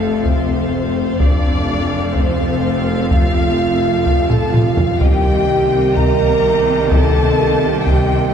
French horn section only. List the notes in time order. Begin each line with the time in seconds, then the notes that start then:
Already playing: A3
0.26 C4
1.22 D4
2.16 C4
3.10 F4
4.06 F4
4.30 A4
4.52 F4
5.01 G4
5.96 A#4
6.92 A4
7.88 G4